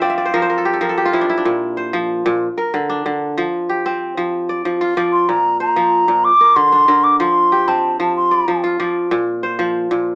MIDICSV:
0, 0, Header, 1, 3, 480
1, 0, Start_track
1, 0, Key_signature, -1, "major"
1, 0, Tempo, 319149
1, 2190, Time_signature, 12, 3, 24, 8
1, 15266, End_track
2, 0, Start_track
2, 0, Title_t, "Flute"
2, 0, Program_c, 0, 73
2, 34, Note_on_c, 0, 77, 76
2, 932, Note_off_c, 0, 77, 0
2, 7705, Note_on_c, 0, 84, 81
2, 7953, Note_on_c, 0, 82, 87
2, 7976, Note_off_c, 0, 84, 0
2, 8432, Note_off_c, 0, 82, 0
2, 8440, Note_on_c, 0, 82, 88
2, 9392, Note_on_c, 0, 86, 108
2, 9415, Note_off_c, 0, 82, 0
2, 9865, Note_on_c, 0, 84, 103
2, 9887, Note_off_c, 0, 86, 0
2, 10584, Note_on_c, 0, 86, 83
2, 10606, Note_off_c, 0, 84, 0
2, 10817, Note_off_c, 0, 86, 0
2, 10826, Note_on_c, 0, 84, 89
2, 11553, Note_on_c, 0, 81, 83
2, 11575, Note_off_c, 0, 84, 0
2, 12030, Note_off_c, 0, 81, 0
2, 12040, Note_on_c, 0, 81, 77
2, 12257, Note_off_c, 0, 81, 0
2, 12277, Note_on_c, 0, 84, 88
2, 12941, Note_off_c, 0, 84, 0
2, 15266, End_track
3, 0, Start_track
3, 0, Title_t, "Kora"
3, 0, Program_c, 1, 46
3, 0, Note_on_c, 1, 53, 84
3, 0, Note_on_c, 1, 62, 61
3, 0, Note_on_c, 1, 70, 63
3, 0, Note_on_c, 1, 77, 64
3, 0, Note_on_c, 1, 79, 67
3, 24, Note_on_c, 1, 60, 66
3, 27, Note_on_c, 1, 74, 64
3, 145, Note_on_c, 1, 76, 57
3, 235, Note_off_c, 1, 77, 0
3, 260, Note_off_c, 1, 74, 0
3, 266, Note_on_c, 1, 74, 63
3, 384, Note_on_c, 1, 72, 63
3, 491, Note_off_c, 1, 53, 0
3, 501, Note_off_c, 1, 70, 0
3, 507, Note_on_c, 1, 53, 78
3, 507, Note_on_c, 1, 70, 75
3, 598, Note_off_c, 1, 76, 0
3, 626, Note_off_c, 1, 72, 0
3, 632, Note_on_c, 1, 72, 65
3, 740, Note_off_c, 1, 70, 0
3, 746, Note_on_c, 1, 70, 65
3, 868, Note_on_c, 1, 69, 64
3, 982, Note_on_c, 1, 67, 67
3, 1063, Note_off_c, 1, 79, 0
3, 1097, Note_off_c, 1, 69, 0
3, 1102, Note_off_c, 1, 62, 0
3, 1103, Note_on_c, 1, 69, 60
3, 1193, Note_off_c, 1, 70, 0
3, 1200, Note_off_c, 1, 53, 0
3, 1217, Note_on_c, 1, 53, 67
3, 1221, Note_on_c, 1, 70, 62
3, 1335, Note_off_c, 1, 69, 0
3, 1341, Note_on_c, 1, 69, 59
3, 1461, Note_off_c, 1, 67, 0
3, 1467, Note_on_c, 1, 67, 68
3, 1587, Note_on_c, 1, 65, 74
3, 1687, Note_off_c, 1, 53, 0
3, 1704, Note_on_c, 1, 53, 73
3, 1706, Note_on_c, 1, 64, 60
3, 1826, Note_on_c, 1, 62, 66
3, 1933, Note_off_c, 1, 74, 0
3, 1942, Note_off_c, 1, 64, 0
3, 1948, Note_on_c, 1, 64, 70
3, 2038, Note_off_c, 1, 65, 0
3, 2063, Note_off_c, 1, 62, 0
3, 2069, Note_on_c, 1, 62, 62
3, 2186, Note_on_c, 1, 46, 77
3, 2265, Note_off_c, 1, 53, 0
3, 2276, Note_off_c, 1, 69, 0
3, 2418, Note_off_c, 1, 72, 0
3, 2663, Note_on_c, 1, 72, 55
3, 2731, Note_off_c, 1, 60, 0
3, 2907, Note_on_c, 1, 53, 72
3, 2997, Note_off_c, 1, 64, 0
3, 3135, Note_off_c, 1, 70, 0
3, 3377, Note_off_c, 1, 46, 0
3, 3395, Note_on_c, 1, 46, 83
3, 3592, Note_off_c, 1, 67, 0
3, 3707, Note_off_c, 1, 46, 0
3, 3707, Note_off_c, 1, 53, 0
3, 3874, Note_on_c, 1, 70, 61
3, 4118, Note_on_c, 1, 50, 74
3, 4349, Note_off_c, 1, 62, 0
3, 4355, Note_on_c, 1, 62, 67
3, 4449, Note_off_c, 1, 72, 0
3, 4580, Note_off_c, 1, 50, 0
3, 4598, Note_on_c, 1, 50, 73
3, 5077, Note_on_c, 1, 53, 77
3, 5147, Note_off_c, 1, 50, 0
3, 5557, Note_on_c, 1, 67, 58
3, 5789, Note_off_c, 1, 70, 0
3, 5801, Note_on_c, 1, 60, 73
3, 6260, Note_off_c, 1, 53, 0
3, 6278, Note_on_c, 1, 53, 74
3, 6757, Note_on_c, 1, 74, 53
3, 6880, Note_off_c, 1, 62, 0
3, 6979, Note_off_c, 1, 53, 0
3, 6997, Note_on_c, 1, 53, 74
3, 7234, Note_on_c, 1, 65, 70
3, 7457, Note_off_c, 1, 53, 0
3, 7469, Note_off_c, 1, 74, 0
3, 7474, Note_on_c, 1, 53, 76
3, 7475, Note_on_c, 1, 74, 66
3, 7681, Note_off_c, 1, 67, 0
3, 7952, Note_on_c, 1, 46, 71
3, 8026, Note_off_c, 1, 53, 0
3, 8425, Note_on_c, 1, 72, 59
3, 8509, Note_off_c, 1, 60, 0
3, 8669, Note_on_c, 1, 53, 69
3, 9128, Note_off_c, 1, 46, 0
3, 9142, Note_off_c, 1, 74, 0
3, 9146, Note_on_c, 1, 46, 73
3, 9465, Note_off_c, 1, 46, 0
3, 9465, Note_off_c, 1, 53, 0
3, 9510, Note_off_c, 1, 65, 0
3, 9636, Note_on_c, 1, 70, 53
3, 9870, Note_on_c, 1, 50, 70
3, 10112, Note_on_c, 1, 62, 61
3, 10211, Note_off_c, 1, 72, 0
3, 10331, Note_off_c, 1, 50, 0
3, 10346, Note_off_c, 1, 70, 0
3, 10348, Note_on_c, 1, 50, 71
3, 10352, Note_on_c, 1, 70, 64
3, 10827, Note_on_c, 1, 53, 82
3, 10903, Note_off_c, 1, 50, 0
3, 11311, Note_on_c, 1, 67, 54
3, 11547, Note_on_c, 1, 60, 72
3, 12009, Note_off_c, 1, 53, 0
3, 12027, Note_on_c, 1, 53, 76
3, 12266, Note_off_c, 1, 70, 0
3, 12502, Note_on_c, 1, 74, 57
3, 12638, Note_off_c, 1, 62, 0
3, 12734, Note_off_c, 1, 53, 0
3, 12752, Note_on_c, 1, 53, 72
3, 12990, Note_on_c, 1, 65, 68
3, 13213, Note_off_c, 1, 53, 0
3, 13223, Note_off_c, 1, 74, 0
3, 13229, Note_on_c, 1, 74, 57
3, 13230, Note_on_c, 1, 53, 69
3, 13435, Note_off_c, 1, 67, 0
3, 13705, Note_on_c, 1, 46, 81
3, 13781, Note_off_c, 1, 53, 0
3, 14184, Note_on_c, 1, 72, 58
3, 14254, Note_off_c, 1, 60, 0
3, 14422, Note_on_c, 1, 53, 72
3, 14886, Note_off_c, 1, 46, 0
3, 14896, Note_off_c, 1, 74, 0
3, 14904, Note_on_c, 1, 46, 76
3, 15220, Note_off_c, 1, 46, 0
3, 15220, Note_off_c, 1, 53, 0
3, 15266, Note_off_c, 1, 65, 0
3, 15266, Note_off_c, 1, 72, 0
3, 15266, End_track
0, 0, End_of_file